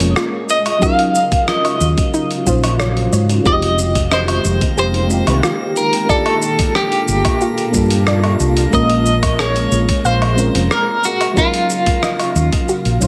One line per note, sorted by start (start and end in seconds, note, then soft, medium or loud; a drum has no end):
0.00 0.12 F1 loud
0.00 0.47 G#3 medium
0.00 0.52 G#3 medium
0.00 0.52 A#3 medium
0.00 0.51 C#4 medium
0.00 0.51 F4 medium
0.00 0.51 A#4 medium
0.00 0.13 C#5 medium
0.00 open hi-hat medium
0.00 shaker soft
0.16 0.46 F4 loud
0.16 cross-stick loud
0.16 shaker soft
0.49 3.43 C#3 medium
0.49 3.43 F#3 medium
0.49 3.43 F4 medium
0.49 0.83 D#5 loud
0.49 shaker medium
0.66 open hi-hat medium
0.66 low woodblock medium
0.66 shaker soft
0.79 2.41 F#3 medium
0.79 2.42 C#4 medium
0.79 2.43 D#4 medium
0.79 1.12 F#4 medium
0.79 kick loud
0.79 shaker soft
0.83 2.44 F4 medium
0.83 2.45 A#4 medium
0.83 1.49 F5 loud
0.99 open hi-hat soft
1.15 shaker medium
1.32 kick loud
1.32 open hi-hat medium
1.32 shaker soft
1.48 1.79 F4 medium
1.48 2.76 D#5 medium
1.48 cross-stick loud
1.48 shaker soft
1.65 open hi-hat soft
1.65 low woodblock medium
1.65 shaker soft
1.81 1.94 D#2 medium
1.81 shaker medium
1.98 kick loud
1.98 open hi-hat medium
1.98 shaker soft
2.14 2.44 D#4 loud
2.14 shaker soft
2.31 open hi-hat soft
2.31 shaker soft
2.45 3.07 A#1 medium
2.45 2.65 F#3 medium
2.45 2.66 C#4 medium
2.45 2.66 D#4 medium
2.45 2.65 F4 medium
2.45 2.66 F4 medium
2.45 2.67 C5 medium
2.45 kick medium
2.45 shaker medium
2.64 open hi-hat medium
2.64 low woodblock medium
2.64 shaker soft
2.80 2.98 C#5 medium
2.80 cross-stick loud
2.80 shaker soft
2.97 open hi-hat soft
3.13 3.38 G#2 medium
3.13 3.43 C#5 medium
3.13 shaker medium
3.29 open hi-hat soft
3.29 shaker soft
3.42 4.39 F1 loud
3.42 6.07 D#3 medium
3.42 5.05 G#3 medium
3.42 6.07 G#3 medium
3.42 13.07 A#3 medium
3.42 5.06 C4 medium
3.42 5.07 D#4 medium
3.42 3.77 F4 medium
3.42 6.07 G4 medium
3.42 13.07 A#6 medium
3.42 kick loud
3.42 shaker soft
3.47 5.08 F4 medium
3.47 5.08 G4 medium
3.47 4.13 D#5 loud
3.62 open hi-hat soft
3.79 shaker medium
3.95 kick loud
3.95 open hi-hat medium
3.95 shaker soft
4.12 4.78 C5 medium
4.12 4.43 D#5 loud
4.12 cross-stick loud
4.12 shaker soft
4.28 open hi-hat soft
4.28 low woodblock medium
4.28 shaker soft
4.45 4.58 F1 medium
4.45 shaker medium
4.61 kick loud
4.61 open hi-hat medium
4.61 shaker soft
4.78 5.21 F1 medium
4.78 5.07 G4 medium
4.78 5.40 C5 medium
4.78 shaker soft
4.94 open hi-hat soft
5.07 6.04 G#3 medium
5.07 6.05 C4 medium
5.07 6.06 D#4 medium
5.07 shaker medium
5.12 6.06 F4 medium
5.12 6.07 G4 medium
5.27 5.40 C2 loud
5.27 open hi-hat medium
5.27 low woodblock medium
5.27 shaker soft
5.43 5.75 F4 medium
5.43 cross-stick loud
5.43 shaker soft
5.76 6.10 A#4 loud
5.76 shaker medium
5.93 open hi-hat medium
5.93 shaker soft
6.06 8.71 A#2 medium
6.06 7.69 A#3 medium
6.06 7.69 D4 medium
6.06 7.70 F4 medium
6.06 8.71 F4 medium
6.06 8.71 A4 medium
6.06 6.76 A4 loud
6.06 6.41 D5 loud
6.06 kick loud
6.06 shaker soft
6.11 7.71 G4 medium
6.11 7.72 A4 medium
6.26 open hi-hat soft
6.26 low woodblock medium
6.42 shaker medium
6.59 kick medium
6.59 open hi-hat medium
6.59 shaker soft
6.75 7.05 G4 medium
6.75 8.04 G4 medium
6.75 cross-stick medium
6.75 shaker soft
6.92 open hi-hat soft
6.92 shaker soft
7.08 7.21 G1 loud
7.08 shaker medium
7.25 kick loud
7.25 open hi-hat medium
7.25 low woodblock medium
7.25 shaker soft
7.41 7.73 F4 medium
7.41 shaker soft
7.58 open hi-hat soft
7.58 shaker soft
7.71 8.34 G2 medium
7.71 8.68 A#3 medium
7.71 8.68 D4 medium
7.71 8.69 F4 medium
7.71 kick medium
7.71 shaker medium
7.76 8.70 G4 medium
7.76 8.71 A4 loud
7.90 open hi-hat medium
7.90 shaker soft
8.07 8.39 D5 loud
8.07 cross-stick loud
8.07 shaker soft
8.24 open hi-hat soft
8.24 low woodblock medium
8.40 8.66 C2 loud
8.40 shaker medium
8.57 open hi-hat medium
8.57 shaker soft
8.70 9.66 A#1 medium
8.70 10.33 G#3 medium
8.70 11.02 G#3 medium
8.70 10.34 A#3 medium
8.70 10.34 C#4 medium
8.70 9.03 A#4 medium
8.70 kick loud
8.70 shaker soft
8.75 10.35 F4 medium
8.75 10.36 A#4 medium
8.75 9.40 D#5 loud
8.90 open hi-hat soft
9.06 shaker medium
9.23 kick loud
9.23 open hi-hat medium
9.23 low woodblock medium
9.23 shaker soft
9.39 9.71 G#4 medium
9.39 10.06 C#5 loud
9.39 cross-stick loud
9.39 shaker soft
9.56 open hi-hat soft
9.56 shaker soft
9.72 9.85 A#1 medium
9.72 shaker medium
9.89 kick loud
9.89 open hi-hat medium
9.89 shaker soft
10.05 10.48 A#1 medium
10.05 10.72 C5 loud
10.05 10.36 F5 loud
10.05 shaker soft
10.22 open hi-hat soft
10.22 low woodblock medium
10.36 11.01 G#3 medium
10.36 11.02 C4 medium
10.36 11.02 C#4 medium
10.36 11.02 F4 medium
10.36 11.03 A#4 medium
10.36 shaker medium
10.55 10.67 F1 loud
10.55 open hi-hat medium
10.55 shaker soft
10.71 11.01 A#4 medium
10.71 11.06 A#4 medium
10.71 cross-stick loud
10.71 shaker soft
11.04 13.07 C#3 medium
11.04 13.07 F#3 medium
11.04 11.38 F#4 medium
11.04 13.07 F5 medium
11.04 shaker medium
11.21 open hi-hat medium
11.21 low woodblock medium
11.21 shaker soft
11.34 12.96 F#3 medium
11.34 12.97 C#4 medium
11.34 12.98 D#4 medium
11.34 11.68 F4 medium
11.34 kick loud
11.34 shaker soft
11.38 13.07 F4 medium
11.38 12.99 F4 medium
11.38 13.00 A#4 loud
11.54 open hi-hat soft
11.54 shaker soft
11.70 shaker medium
11.86 kick loud
11.86 open hi-hat medium
11.86 shaker soft
12.03 12.34 D#5 loud
12.03 cross-stick loud
12.03 shaker soft
12.19 open hi-hat soft
12.19 low woodblock medium
12.19 shaker soft
12.36 12.49 D#2 loud
12.36 shaker medium
12.53 kick loud
12.53 open hi-hat medium
12.53 shaker soft
12.69 12.99 F#4 medium
12.69 shaker soft
12.85 12.98 A#1 medium
12.85 open hi-hat soft
12.85 shaker soft
13.00 13.07 A#1 loud
13.00 13.07 F#3 medium
13.00 13.07 C#4 medium
13.00 13.07 D#4 medium
13.00 13.07 F4 medium
13.00 13.07 C5 loud
13.00 kick medium
13.00 shaker medium